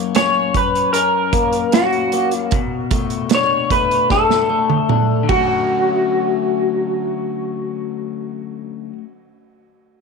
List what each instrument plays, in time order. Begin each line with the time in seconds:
Already playing: clean electric guitar F#2 A#3
0.15 clean electric guitar C#4 C#5, snare, closed hi-hat
0.54 clean electric guitar B4, kick, closed hi-hat
0.75 closed hi-hat
0.93 clean electric guitar C#4 A#4, closed hi-hat
1.33 clean electric guitar A#3, kick, closed hi-hat
1.53 closed hi-hat
1.72 clean electric guitar C#4 F#4, snare, closed hi-hat
1.92 closed hi-hat
2.12 clean electric guitar A#3, closed hi-hat
2.31 closed hi-hat
2.51 clean electric guitar B2, kick, closed hi-hat
2.91 clean electric guitar A3, kick, closed hi-hat
3.10 closed hi-hat
3.29 clean electric guitar D4, snare, closed hi-hat
3.35 clean electric guitar C#5
3.70 clean electric guitar A3 B4, kick, closed hi-hat
3.91 closed hi-hat
4.10 clean electric guitar D4 A4, kick, snare
4.30 snare
4.50 clean electric guitar A3
4.70 high tom
4.89 clean electric guitar D4, mid tom
5.23 clean electric guitar D3
5.29 clean electric guitar F#3 F#4, kick, ride
5.36 clean electric guitar A3
5.40 clean electric guitar C#4
5.45 clean electric guitar F#4